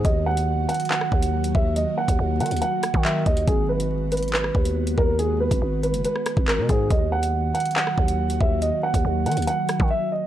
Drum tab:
HH |x-----x-----xxxx------x---x-----|x-----x-----xxxxx---x-------x-x-|x-----x-----xxxx------x---x-----|x-----x-----x-x-x---x-------x---|
CP |----------------x---------------|------------------------x-------|----------------x---------------|------------------------x-------|
SD |------------------r-------------|--------------------r-----------|------------------r-------------|------------------r-r-----------|
BD |o-------------------o-------o---|------o---------------o-----o---|o-------------------o-------o---|------o---------------o-----o---|

HH |x-----x-----xxxx------x---x-----|x-----x-----xxxxx---x-----------|
CP |----------------x---------------|--------------------------------|
SD |------------------r-------------|--------------------r-----------|
BD |o-------------------o-------o---|------o---------------o---------|